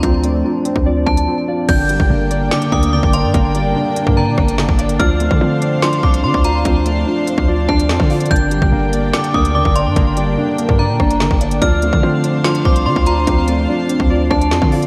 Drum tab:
CC |--------------------------------|x-------------------------------|--------------------------------|--------------------------------|
HH |x---x-------x---------x---------|x---x-------x---x-x---x-----x---|x---x-------x---------x-----x-x-|x---x-------x---x-x---x-----x---|
SD |--------------------------------|----------------o---------------|--------------------r---o-------|----------------o---------------|
BD |o-------------o-----o-----------|o-----o-------------o-----o-----|o-------------o-----o-----o-----|o-----o-------------o-----o-----|

CC |--------------------------------|--------------------------------|--------------------------------|--------------------------------|
HH |x---x-------x---------x-----o-xx|xx--x-------x---x-x---x-----x---|x---x-------x---------x-----x-x-|x---x-------x---x-x---x-----x---|
SD |--------------------r---o-------|----------------o---------------|--------------------r---o-------|----------------o---------------|
BD |o-------------o-----o-----o-----|o-----o-------------o-----o-----|o-------------o-----o-----o-----|o-----o-------------o-----o-----|

CC |--------------------------------|
HH |x---x-------x---------x-----o-x-|
SD |--------------------r---o-------|
BD |o-------------o-----o-----o-----|